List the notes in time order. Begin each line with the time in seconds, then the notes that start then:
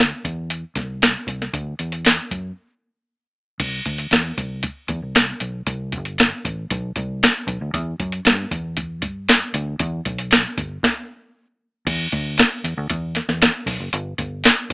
Already playing: D2
0.00 snare
0.25 E2, kick, closed hi-hat
0.50 closed hi-hat
0.76 C2, kick, snare, closed hi-hat
1.02 snare, closed hi-hat
1.27 C2, kick, closed hi-hat
1.42 snare
1.54 D2, kick, closed hi-hat
1.79 E2, closed hi-hat
1.92 closed hi-hat
2.05 snare, closed hi-hat
2.31 F#2, kick, closed hi-hat
3.60 C2, kick, closed hi-hat, crash
3.86 D2, kick, closed hi-hat
3.98 closed hi-hat
4.11 E2, snare, closed hi-hat
4.38 C2, kick, closed hi-hat
4.63 kick, closed hi-hat
4.88 E2, kick, closed hi-hat
5.02 C2
5.15 snare, closed hi-hat
5.40 B1, closed hi-hat
5.67 C2, kick, closed hi-hat
5.92 G1, kick, closed hi-hat
6.05 closed hi-hat
6.18 snare, closed hi-hat
6.45 A1, kick, closed hi-hat
6.70 B1, kick, closed hi-hat
6.96 C2, kick, closed hi-hat
7.23 snare, closed hi-hat
7.47 B1, kick, closed hi-hat
7.61 D2
7.74 E2, kick, closed hi-hat
8.00 F#2, kick, closed hi-hat
8.12 closed hi-hat
8.25 G2, snare, closed hi-hat
8.51 E2, kick, closed hi-hat
8.77 kick, closed hi-hat
9.02 G2, kick, closed hi-hat
9.29 snare, closed hi-hat
9.54 D2, closed hi-hat
9.79 E2, kick, closed hi-hat
10.05 B1, kick, closed hi-hat
10.18 closed hi-hat
10.31 snare, closed hi-hat
10.58 G1, kick, closed hi-hat
10.83 kick, snare
11.87 E2, kick, closed hi-hat, crash
12.12 D2, kick, closed hi-hat
12.38 snare, closed hi-hat
12.64 E2, closed hi-hat
12.78 D2
12.90 E2, kick, closed hi-hat
13.15 snare, closed hi-hat
13.29 E2, snare
13.42 snare, closed hi-hat
13.66 B1, kick, open hi-hat
13.80 F#1
13.93 G1, closed hi-hat
14.18 G1, kick, closed hi-hat
14.44 snare, closed hi-hat